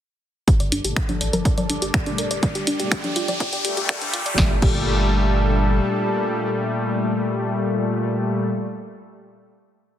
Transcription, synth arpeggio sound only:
0.48 0.53 G4 medium
0.60 0.71 D5 loud
0.72 0.81 D4 medium
0.85 0.93 G4 medium
0.96 1.05 A#5 medium
1.09 1.20 D4 medium
1.21 1.33 D5 medium
1.33 1.38 A#4 loud
1.45 1.56 D5 medium
1.58 1.69 D5 loud
1.70 1.81 D4 medium
1.82 1.91 G4 medium
1.94 2.03 A#5 medium
2.06 2.18 D4 medium
2.18 2.27 A#4 medium
2.31 2.36 D5 medium
2.43 2.55 D5 medium
2.55 2.67 G4 medium
2.67 2.79 D4 medium
2.80 2.88 G4 medium
2.92 3.03 G4 medium
3.04 3.15 D4 medium
3.16 3.21 F4 medium
3.28 3.33 D5 medium
3.40 3.52 D5 medium
3.53 3.64 G4 medium
3.65 3.74 G4 medium
3.77 3.82 G4 medium
3.89 4.01 G4 medium
4.02 4.13 D4 medium
4.14 4.19 F4 medium
4.26 4.31 D5 medium
4.38 4.52 G4 medium
4.62 4.76 G4 medium

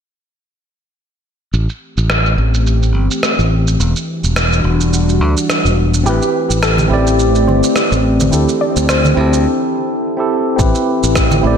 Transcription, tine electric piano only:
6.04 6.87 C4 medium
6.04 6.88 E4 medium
6.04 6.89 G4 medium
6.09 6.90 B4 medium
6.88 8.28 C4 medium
6.88 8.29 E4 medium
6.88 8.30 G4 medium
6.93 8.31 D5 loud
8.31 8.48 C4 medium
8.31 8.48 E4 medium
8.31 8.49 G4 medium
8.31 8.49 A4 medium
9.15 10.14 C4 medium
9.15 10.15 E4 medium
9.15 10.16 G4 medium
9.21 10.17 A4 medium
10.17 10.55 C4 medium
10.17 10.56 E4 medium
10.17 10.56 G4 medium
10.17 10.57 A4 medium
10.56 11.40 C4 medium
10.56 11.41 E4 medium
10.56 11.42 G4 medium
10.62 11.42 B4 medium
11.41 11.58 C4 medium
11.41 11.58 E4 medium
11.45 11.58 G4 medium
11.45 11.58 D5 medium

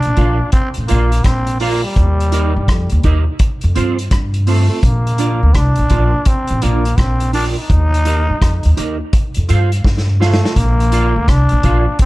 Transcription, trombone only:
0.00 0.52 D4 loud
0.53 0.69 C4 loud
0.88 1.26 A#3 medium
1.24 1.60 C4 loud
1.61 1.82 A#3 medium
1.84 3.23 G3 medium
4.48 4.86 A3 medium
4.84 5.58 A#3 medium
5.56 6.29 D4 loud
6.27 6.64 C4 medium
6.63 7.00 A#3 medium
6.99 7.34 C4 medium
7.34 7.45 D4 loud
7.57 8.96 D#4 loud
10.22 10.59 A3 medium
10.57 11.31 A#3 loud
11.30 12.00 D4 loud
12.02 12.05 C4 loud

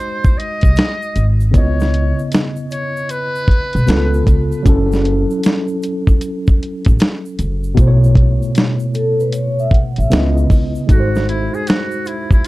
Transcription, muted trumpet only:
0.00 0.39 C5 medium
0.38 1.31 D#5 loud
1.55 2.29 C#5 medium
2.72 3.12 C#5 medium
3.11 4.27 B4 loud
10.90 11.26 F#4 medium
11.29 11.56 E4 medium
11.55 11.69 G#4 medium
11.68 12.09 F#4 medium
12.07 12.32 E4 medium
12.33 12.48 E4 medium

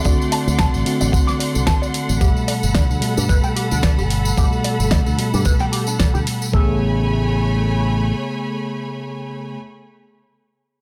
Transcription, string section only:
0.00 2.17 A3 medium
0.00 2.17 D5 medium
0.00 6.50 F#5 medium
0.00 2.17 C6 medium
2.21 6.49 A4 medium
2.21 6.49 B5 medium
6.53 9.58 A3 medium
6.53 9.58 C#5 medium
6.53 9.58 G#5 medium
6.53 9.58 B5 medium

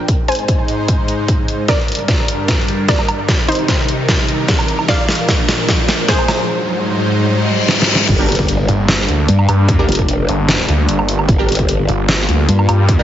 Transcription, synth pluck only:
0.00 0.21 A#4 medium
0.00 0.21 G5 medium
0.28 1.61 C5 medium
0.28 1.61 G#5 medium
1.68 2.21 A#4 medium
1.68 2.21 D5 loud
2.89 3.41 A#4 medium
2.89 3.41 D5 medium
3.48 4.81 D#4 medium
3.48 4.81 C5 medium
4.88 5.41 D5 medium
4.88 5.41 F5 medium
6.08 6.49 G#4 medium
6.08 6.49 C5 medium

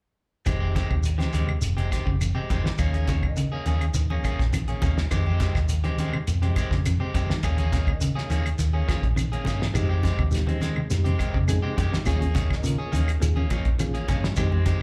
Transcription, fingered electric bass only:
0.47 0.81 F1 medium
0.91 1.25 D#2 medium
1.34 1.56 D#2 medium
1.62 1.85 F1 medium
2.07 2.29 F1 medium
2.50 2.61 F1 medium
2.65 muted fingered electric bass stroke soft
2.79 3.25 D#2 medium
3.23 3.57 D#3 medium
3.66 3.89 D#2 medium
3.94 4.17 D#2 medium
4.25 muted fingered electric bass stroke soft
4.40 4.73 A#1 medium
4.83 5.05 D#2 medium
5.12 5.46 F2 medium
5.55 5.89 D#2 medium
5.98 6.21 D#3 medium
6.28 6.50 F2 medium
6.71 6.94 F2 medium
7.15 7.26 F2 medium
7.30 muted fingered electric bass stroke soft
7.43 7.89 D#2 medium
7.88 8.21 D#3 medium
8.30 8.53 D#2 medium
8.59 8.81 D#2 medium
8.89 muted fingered electric bass stroke soft
9.04 9.37 A#1 medium
9.46 9.69 G2 medium
9.75 10.09 F2 medium
10.19 10.53 D#2 medium
10.62 10.84 D#3 medium
10.91 11.13 F2 loud
11.34 11.57 F2 medium
11.78 11.89 F2 medium
11.92 muted fingered electric bass stroke soft
12.07 12.52 D#2 medium
12.51 12.84 D#3 medium
12.93 13.16 D#2 medium
13.22 13.44 D#2 loud
13.51 muted fingered electric bass stroke soft
13.66 13.99 A#1 medium
14.09 14.31 G2 loud
14.38 14.71 F2 medium

